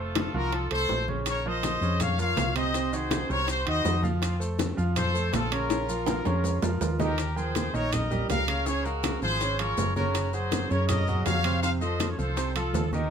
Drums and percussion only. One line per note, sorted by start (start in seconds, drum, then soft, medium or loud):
0.15 high bongo medium
0.15 high conga loud
0.15 high timbale loud
0.15 low timbale medium
0.34 high conga soft
0.52 high bongo medium
0.52 high conga soft
0.52 high timbale medium
0.71 high bongo soft
0.71 high conga soft
0.71 high timbale medium
0.89 high bongo medium
0.89 low bongo medium
0.89 low timbale medium
1.08 high bongo soft
1.08 high conga medium
1.26 high bongo medium
1.26 high conga soft
1.26 high timbale medium
1.26 maracas medium
1.46 high conga soft
1.63 high bongo medium
1.63 high conga loud
1.63 high timbale medium
1.63 low timbale medium
1.63 maracas medium
1.82 high conga soft
1.82 maracas soft
2.00 high bongo medium
2.00 high conga soft
2.00 low conga medium
2.00 high timbale medium
2.00 maracas medium
2.19 high conga soft
2.19 maracas medium
2.37 high bongo medium
2.37 low bongo medium
2.37 high conga medium
2.37 high timbale medium
2.37 low timbale medium
2.37 maracas medium
2.56 high timbale loud
2.56 maracas soft
2.74 high bongo medium
2.74 high conga soft
2.74 high timbale medium
2.74 maracas medium
2.92 high bongo soft
2.92 high conga soft
2.92 maracas medium
3.11 high bongo medium
3.11 high conga loud
3.11 high timbale medium
3.11 low timbale medium
3.11 maracas medium
3.30 high conga soft
3.30 maracas soft
3.48 high bongo medium
3.48 high conga soft
3.48 high timbale medium
3.48 maracas medium
3.67 high bongo soft
3.67 high conga soft
3.67 high timbale medium
3.85 high bongo medium
3.85 low bongo medium
3.85 low timbale medium
3.85 maracas medium
4.03 high bongo soft
4.03 high conga medium
4.03 maracas soft
4.22 high bongo medium
4.22 high conga soft
4.22 high timbale medium
4.22 maracas medium
4.41 high conga soft
4.41 maracas medium
4.59 high bongo medium
4.59 high conga loud
4.59 high timbale medium
4.59 low timbale medium
4.59 maracas medium
4.78 high conga soft
4.78 maracas soft
4.96 high bongo medium
4.96 high conga soft
4.96 low conga medium
4.96 high timbale loud
4.96 maracas medium
5.15 high conga soft
5.15 maracas medium
5.33 high bongo medium
5.33 low bongo medium
5.33 high conga loud
5.33 high timbale medium
5.33 low timbale medium
5.33 maracas medium
5.52 high timbale loud
5.52 maracas soft
5.70 high bongo loud
5.70 high conga soft
5.70 high timbale medium
5.70 maracas medium
5.89 high conga soft
5.89 maracas medium
6.06 high bongo medium
6.06 high conga loud
6.06 high timbale medium
6.06 maracas medium
6.25 low bongo medium
6.25 high conga soft
6.25 high timbale medium
6.25 maracas soft
6.44 high conga soft
6.44 low timbale medium
6.44 maracas medium
6.62 low bongo medium
6.62 low timbale medium
6.62 maracas medium
6.81 low timbale loud
6.81 maracas medium
6.99 low bongo loud
6.99 high conga medium
6.99 low timbale medium
6.99 maracas soft
7.18 high bongo medium
7.18 high conga soft
7.18 high timbale medium
7.18 maracas medium
7.37 high bongo soft
7.37 high conga soft
7.37 maracas soft
7.55 high bongo medium
7.55 high conga loud
7.55 high timbale medium
7.55 low timbale medium
7.55 maracas medium
7.74 high bongo soft
7.74 high conga soft
7.74 maracas soft
7.92 high bongo medium
7.92 high conga soft
7.92 low conga medium
7.92 high timbale medium
7.92 maracas medium
8.11 high bongo soft
8.11 high conga soft
8.11 low conga medium
8.11 maracas soft
8.30 high bongo soft
8.30 low bongo medium
8.30 high conga medium
8.30 high timbale medium
8.30 low timbale medium
8.30 maracas medium
8.48 high conga soft
8.48 high timbale loud
8.48 maracas soft
8.66 high bongo medium
8.66 high conga soft
8.66 maracas medium
8.85 high bongo soft
8.85 high conga soft
8.85 maracas soft
9.03 high bongo medium
9.03 high conga loud
9.03 high timbale loud
9.03 low timbale medium
9.03 maracas medium
9.22 high conga soft
9.22 maracas soft
9.41 high bongo medium
9.41 high conga soft
9.41 high timbale medium
9.41 maracas medium
9.59 high bongo soft
9.59 high conga soft
9.59 high timbale medium
9.59 maracas soft
9.78 high bongo soft
9.78 low bongo medium
9.78 high conga medium
9.78 low timbale medium
9.78 maracas medium
9.96 high conga medium
9.96 maracas soft
10.15 high bongo medium
10.15 high conga soft
10.15 high timbale medium
10.15 maracas medium
10.33 high bongo soft
10.33 high conga soft
10.33 maracas soft
10.52 high bongo medium
10.52 high conga loud
10.52 high timbale medium
10.52 low timbale medium
10.52 maracas medium
10.70 high bongo soft
10.70 high conga soft
10.70 maracas soft
10.89 high bongo medium
10.89 high conga soft
10.89 low conga medium
10.89 high timbale loud
10.89 maracas medium
11.08 high bongo soft
11.08 high conga soft
11.08 low conga medium
11.08 maracas soft
11.26 high bongo soft
11.26 low bongo medium
11.26 high conga loud
11.26 high timbale medium
11.26 low timbale medium
11.26 maracas medium
11.44 high conga soft
11.44 high timbale loud
11.44 maracas soft
11.63 high bongo medium
11.63 high conga soft
11.63 maracas medium
11.82 high bongo soft
11.82 high conga soft
11.82 maracas soft
12.00 high bongo medium
12.00 high conga medium
12.00 high timbale medium
12.00 low timbale medium
12.00 maracas medium
12.19 high bongo soft
12.19 high conga soft
12.19 maracas soft
12.37 high bongo medium
12.37 high conga soft
12.37 high timbale medium
12.37 maracas medium
12.56 high bongo soft
12.56 high conga soft
12.56 high timbale medium
12.56 maracas soft
12.74 high bongo soft
12.74 low bongo medium
12.74 high conga loud
12.74 low timbale medium
12.74 maracas medium
12.93 high conga medium
12.93 maracas soft